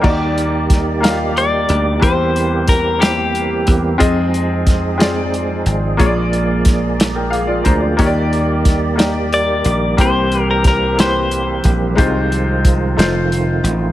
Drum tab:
CC |x-----|------|------|------|
HH |-xxxxx|xxxxxx|xxxxxx|xxxxxx|
SD |--oo--|--oo--|--oo--|--oo--|
BD |o-o---|o-o--o|o-o---|o-o--o|

CC |------|------|------|
HH |xxxxxx|xxxxxx|xxxxxx|
SD |--oo--|--oo--|---o--|
BD |o-o---|o-o--o|o-o---|